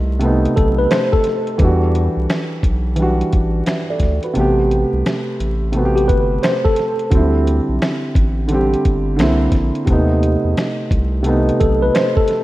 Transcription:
Already playing: sub bass C2, felt piano C3 A3 B3 D#4
0.19 felt piano C3 A3, closed hi-hat
0.23 felt piano B3 D#4
0.45 closed hi-hat
0.56 sub bass B1, tine electric piano A4, kick, closed hi-hat
0.78 tine electric piano B4
0.91 tine electric piano C5, finger snap, snare, closed hi-hat
1.13 tine electric piano A4, kick
1.24 snare, closed hi-hat
1.47 closed hi-hat
1.58 sub bass E2, felt piano E3 G3, kick, closed hi-hat
1.62 felt piano D4 F#4
1.95 closed hi-hat
2.17 sub bass C2
2.30 finger snap, snare, closed hi-hat
2.63 sub bass B1, kick, closed hi-hat
2.96 felt piano E3 G3, closed hi-hat
3.00 felt piano D4 F#4
3.21 closed hi-hat
3.32 sub bass A1, kick, closed hi-hat
3.66 felt piano B4 E5, finger snap, snare, closed hi-hat
3.90 felt piano A4 D5
4.00 sub bass D2, kick, snare, closed hi-hat
4.23 felt piano F#4 B4, closed hi-hat
4.33 sub bass A1, felt piano C3 A3, closed hi-hat
4.38 felt piano B3 G4
4.71 closed hi-hat
4.93 sub bass C2
5.06 finger snap, snare, closed hi-hat
5.40 sub bass A1, closed hi-hat
5.72 felt piano C3 A3, closed hi-hat
5.77 felt piano B3 F#4
5.85 felt piano G4
5.96 tine electric piano G4, closed hi-hat
6.08 sub bass G1, tine electric piano B4, kick, closed hi-hat
6.43 tine electric piano C5, finger snap, snare, closed hi-hat
6.64 tine electric piano A4, kick
6.76 snare, closed hi-hat
6.99 closed hi-hat
7.10 sub bass D2, felt piano D3 F#3, kick, closed hi-hat
7.15 felt piano C4 E4
7.19 felt piano G3
7.47 closed hi-hat
7.69 sub bass B1
7.82 finger snap, snare, closed hi-hat
8.15 sub bass A1, kick, closed hi-hat
8.48 felt piano D3 G3, closed hi-hat
8.52 felt piano C4 G4
8.74 closed hi-hat
8.85 sub bass G1, kick, closed hi-hat
9.16 sub bass C2, felt piano D3 A#3, snare, closed hi-hat
9.21 felt piano C4 E4, finger snap
9.52 sub bass A#1, kick, snare, closed hi-hat
9.75 closed hi-hat
9.86 sub bass D#2, felt piano C3 A3, kick, closed hi-hat
9.90 felt piano B3 D#4
10.23 closed hi-hat
10.44 sub bass E2
10.57 finger snap, snare, closed hi-hat
10.91 sub bass C2, kick, closed hi-hat
11.23 felt piano C3 A3, closed hi-hat
11.27 felt piano B3 D#4
11.49 closed hi-hat
11.60 sub bass B1, tine electric piano A4, kick, closed hi-hat
11.82 tine electric piano B4
11.95 tine electric piano C5, finger snap, snare, closed hi-hat
12.17 tine electric piano A4, kick
12.28 snare, closed hi-hat

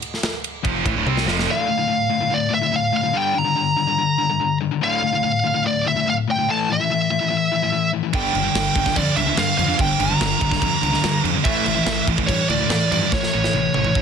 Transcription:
0.02 ride
0.14 snare
0.23 snare, ride
0.44 ride
0.63 picked electric bass F1, distorted electric guitar F2 C3 F3, kick, ride
0.85 picked electric bass A1, distorted electric guitar A2 E3, kick, ride
0.95 picked electric bass D1, distorted electric guitar D2 A2
1.06 picked electric bass C2, distorted electric guitar C3 G3 C4, high tom
1.17 snare
1.25 picked electric bass F1, distorted electric guitar F2 C3 F3, snare
1.39 snare
1.47 distorted electric guitar D2 A2 D3
1.51 lead electric guitar F5
1.67 distorted electric guitar D2 A2
1.78 distorted electric guitar D2 A2
1.88 distorted electric guitar D2 A2
2.10 distorted electric guitar D2 A2
2.20 distorted electric guitar D2 A2
2.30 distorted electric guitar D2 A2, lead electric guitar D5
2.50 distorted electric guitar D2 A2
2.54 lead electric guitar E5
2.61 distorted electric guitar D2 A2
2.72 distorted electric guitar D2 A2
2.76 lead electric guitar F5
2.92 distorted electric guitar D2 A2
2.97 lead electric guitar F5
3.03 distorted electric guitar D2 A2
3.13 distorted electric guitar G2 D3 G3
3.18 lead electric guitar G5
3.34 distorted electric guitar G2 D3
3.38 lead electric guitar A#5
3.44 distorted electric guitar G2 D3
3.56 distorted electric guitar G2 D3
3.77 distorted electric guitar G2 D3
3.87 distorted electric guitar G2 D3
3.98 distorted electric guitar G2 D3
4.18 distorted electric guitar G2 D3
4.30 distorted electric guitar G2 D3
4.40 distorted electric guitar G2 D3
4.61 distorted electric guitar G2 D3
4.71 distorted electric guitar G2 D3
4.81 distorted electric guitar D2 A2 D3, lead electric guitar F5
5.02 distorted electric guitar D2 A2
5.13 distorted electric guitar D2 A2
5.23 distorted electric guitar D2 A2
5.44 distorted electric guitar D2 A2
5.54 distorted electric guitar D2 A2
5.64 distorted electric guitar D2 A2, lead electric guitar D5
5.85 distorted electric guitar D2 A2, lead electric guitar E5
5.96 distorted electric guitar D2 A2
6.06 distorted electric guitar D2 A2, lead electric guitar F5
6.28 distorted electric guitar D2 A2, lead electric guitar G5
6.38 distorted electric guitar D2 A2
6.49 distorted electric guitar A2 E3 A3, lead electric guitar A5
6.69 distorted electric guitar A2 E3, lead electric guitar E5
6.80 distorted electric guitar A2 E3
6.90 distorted electric guitar A2 E3
7.10 distorted electric guitar A2 E3
7.21 distorted electric guitar A2 E3
7.30 distorted electric guitar A2 E3
7.52 distorted electric guitar A2 E3
7.62 distorted electric guitar A2 E3
7.72 distorted electric guitar A2 E3
7.93 distorted electric guitar A2 E3
8.03 distorted electric guitar A2 E3
8.13 picked electric bass G1, distorted electric guitar G2 D3 G3, lead electric guitar G5, kick, crash
8.34 picked electric bass G1, distorted electric guitar G2 D3, crash
8.44 distorted electric guitar G2 D3
8.55 picked electric bass G1, distorted electric guitar G2 D3, snare, crash
8.75 picked electric bass G1, distorted electric guitar G2 D3, kick, crash
8.86 distorted electric guitar G2 D3, kick, snare
8.96 picked electric bass F2, distorted electric guitar G2 D3, lead electric guitar D5, kick, crash
9.17 picked electric bass C#2, distorted electric guitar G2 D3, lead electric guitar E5, crash
9.27 distorted electric guitar G2 D3
9.37 distorted electric guitar G2 D3, picked electric bass G2, lead electric guitar F5, snare, crash
9.58 picked electric bass F2, distorted electric guitar G2 D3, lead electric guitar F5, crash
9.68 distorted electric guitar G2 D3
9.78 picked electric bass G1, distorted electric guitar G2 D3, lead electric guitar G5, kick, crash
9.98 picked electric bass G1, distorted electric guitar G2 D3, lead electric guitar A#5, crash
10.09 distorted electric guitar G2 D3
10.20 picked electric bass G1, distorted electric guitar G2 D3, snare, crash
10.39 picked electric bass G1, distorted electric guitar G2 D3, kick, crash
10.51 distorted electric guitar G2 D3, kick, snare
10.61 picked electric bass F2, distorted electric guitar G2 D3, kick, crash
10.81 picked electric bass C#2, distorted electric guitar G2 D3, crash
10.92 distorted electric guitar G2 D3, snare
11.02 distorted electric guitar G2 D3, picked electric bass G2, snare, crash
11.23 picked electric bass F2, distorted electric guitar G2 D3, crash
11.33 distorted electric guitar G2 D3
11.43 picked electric bass A1, distorted electric guitar A2 E3 A3, lead electric guitar E5, kick, crash
11.64 picked electric bass A1, distorted electric guitar A2 E3, crash
11.75 distorted electric guitar A2 E3
11.85 picked electric bass A1, distorted electric guitar A2 E3, snare, crash
12.07 picked electric bass A1, distorted electric guitar A2 E3, kick, crash
12.18 distorted electric guitar A2 E3, kick
12.27 picked electric bass G2, distorted electric guitar A2 E3, lead electric guitar C#5, kick, crash
12.49 picked electric bass D2, distorted electric guitar A2 E3, lead electric guitar D5, crash
12.60 distorted electric guitar A2 E3
12.69 picked electric bass A2, distorted electric guitar A2 E3, snare, crash
12.92 picked electric bass G2, distorted electric guitar A2 E3, lead electric guitar D5, crash
13.02 distorted electric guitar A2 E3
13.12 picked electric bass A1, distorted electric guitar A2 E3, lead electric guitar C#5, kick, snare
13.23 snare
13.33 picked electric bass A1, distorted electric guitar A2 E3
13.44 distorted electric guitar A2 E3, snare
13.53 picked electric bass A1, distorted electric guitar A2 E3, high tom
13.74 picked electric bass A1, distorted electric guitar A2 E3, high tom
13.84 distorted electric guitar A2 E3, mid tom
13.95 picked electric bass G2, distorted electric guitar A2 E3, kick

